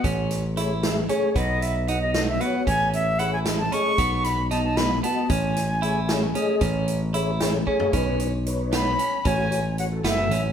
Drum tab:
HH |x-x-x-x-x-|x-x-x-x-x-|x-x-x-x-x-|x-x-x-x-x-|
SD |--o-o-o---|------o---|------o---|--o-o-o---|
FT |----------|----------|----------|----------|
BD |o---------|o---------|o---------|o---------|

HH |x-x-x-x-x-|x-x-x-x---|x-x-x-x-x-|x-x-x-x-x-|
SD |--o---o---|------o---|------o---|------o-o-|
FT |----------|---------o|----------|----------|
BD |o---------|o-------o-|o---------|o---------|